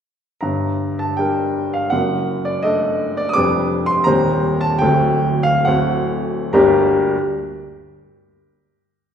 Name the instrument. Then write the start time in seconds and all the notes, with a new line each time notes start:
grand piano
0.41 G1 G2 A#5
0.99 A5
1.17 G3 D4 A#4 G5
1.74 F5
1.90 F#1 F#2 F#5
2.45 D5
2.63 A3 D4 A4 D#5
3.17 D5
3.29 D#6
3.33 F1 F2 G3 D4 B4 D6
3.86 C6
4.04 D#1 D#2 G3 C4 C5 A#5
4.61 A5
4.79 D1 D2 A3 C4 A4 G5
5.43 F5
5.65 D1 D2 A3 C4 A4 F#5
6.53 G1 D2 G3 A#3 D4 G4 A#5